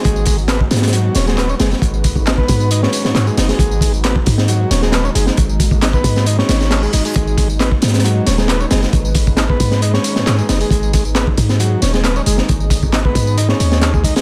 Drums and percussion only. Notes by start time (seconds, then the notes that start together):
0.04 kick, closed hi-hat, tambourine
0.16 tambourine
0.26 kick, closed hi-hat, open hi-hat, tambourine
0.38 tambourine
0.48 snare, clap, closed hi-hat, tambourine
0.61 kick
0.71 snare, closed hi-hat, open hi-hat, tambourine
0.76 snare, closed hi-hat
0.82 snare, closed hi-hat, tambourine
0.88 snare, closed hi-hat
0.93 closed hi-hat, tambourine
1.15 snare, closed hi-hat, open hi-hat, tambourine
1.27 snare, tambourine
1.38 snare, clap, closed hi-hat, tambourine
1.49 tambourine
1.60 snare, closed hi-hat, open hi-hat, tambourine
1.72 snare, tambourine
1.82 kick, closed hi-hat, tambourine
1.94 tambourine
2.04 kick, closed hi-hat, open hi-hat, tambourine
2.16 kick, tambourine
2.26 snare, clap, closed hi-hat, tambourine
2.38 kick
2.48 kick, closed hi-hat, open hi-hat, tambourine
2.60 tambourine
2.71 closed hi-hat, tambourine
2.83 snare
2.93 closed hi-hat, open hi-hat, tambourine
3.05 snare, tambourine
3.15 snare, clap, closed hi-hat, tambourine
3.27 tambourine
3.38 snare, closed hi-hat, open hi-hat, tambourine
3.49 snare, open hi-hat, tambourine
3.59 kick, closed hi-hat, tambourine
3.71 tambourine
3.81 kick, closed hi-hat, open hi-hat, tambourine
3.94 tambourine
4.04 snare, clap, closed hi-hat, tambourine
4.16 kick
4.26 kick, closed hi-hat, open hi-hat, tambourine
4.38 snare, tambourine
4.48 closed hi-hat, tambourine
4.71 snare, closed hi-hat, open hi-hat, tambourine
4.82 snare, tambourine
4.92 snare, clap, closed hi-hat, tambourine
5.05 tambourine
5.15 closed hi-hat, open hi-hat, tambourine
5.27 snare, tambourine
5.37 kick, closed hi-hat, tambourine
5.49 tambourine
5.60 kick, closed hi-hat, open hi-hat, tambourine
5.71 kick, tambourine
5.82 snare, clap, closed hi-hat, tambourine
5.93 kick, tambourine
6.04 kick, closed hi-hat, open hi-hat, tambourine
6.16 snare, tambourine
6.26 closed hi-hat, tambourine
6.39 snare
6.49 snare, closed hi-hat, open hi-hat, tambourine
6.61 snare, tambourine
6.71 snare, clap, closed hi-hat, tambourine
6.83 tambourine
6.93 closed hi-hat, open hi-hat, tambourine
7.05 open hi-hat, tambourine
7.16 kick, closed hi-hat, tambourine
7.27 tambourine
7.38 kick, closed hi-hat, open hi-hat, tambourine
7.50 tambourine
7.60 snare, clap, closed hi-hat, tambourine
7.72 kick
7.82 snare, closed hi-hat, open hi-hat, tambourine
7.88 snare, closed hi-hat
7.94 snare, closed hi-hat, tambourine
7.99 snare, closed hi-hat
8.04 closed hi-hat, tambourine
8.26 snare, closed hi-hat, open hi-hat, tambourine
8.38 snare, tambourine
8.48 snare, clap, closed hi-hat, tambourine
8.60 tambourine
8.71 snare, closed hi-hat, open hi-hat, tambourine
8.83 snare, tambourine
8.93 kick, closed hi-hat, tambourine
9.05 tambourine
9.15 kick, closed hi-hat, open hi-hat, tambourine
9.27 kick, tambourine
9.37 snare, clap, closed hi-hat, tambourine
9.50 kick
9.60 kick, closed hi-hat, open hi-hat, tambourine
9.72 snare, tambourine
9.82 closed hi-hat, tambourine
9.94 snare
10.04 closed hi-hat, open hi-hat, tambourine
10.16 snare, tambourine
10.26 snare, clap, closed hi-hat, tambourine
10.38 tambourine
10.49 snare, closed hi-hat, open hi-hat, tambourine
10.61 open hi-hat, tambourine
10.71 kick, closed hi-hat, tambourine
10.83 tambourine
10.93 kick, closed hi-hat, open hi-hat, tambourine
11.05 tambourine
11.15 snare, clap, closed hi-hat, tambourine
11.27 kick
11.38 kick, closed hi-hat, open hi-hat, tambourine
11.49 snare, tambourine
11.60 closed hi-hat, tambourine
11.82 snare, closed hi-hat, open hi-hat, tambourine
11.94 snare, tambourine
12.04 snare, clap, closed hi-hat, tambourine
12.16 tambourine
12.26 closed hi-hat, open hi-hat, tambourine
12.38 snare, tambourine
12.49 kick, closed hi-hat, tambourine
12.60 tambourine
12.70 kick, closed hi-hat, open hi-hat, tambourine
12.82 kick, tambourine
12.93 snare, clap, closed hi-hat, tambourine
13.05 kick
13.15 kick, closed hi-hat, open hi-hat, tambourine
13.27 tambourine
13.38 closed hi-hat, tambourine
13.49 snare
13.60 closed hi-hat, open hi-hat, tambourine
13.72 snare, tambourine
13.82 snare, clap, closed hi-hat, tambourine
13.94 kick, tambourine
14.04 kick, closed hi-hat, open hi-hat, tambourine
14.16 snare, closed hi-hat, open hi-hat, tambourine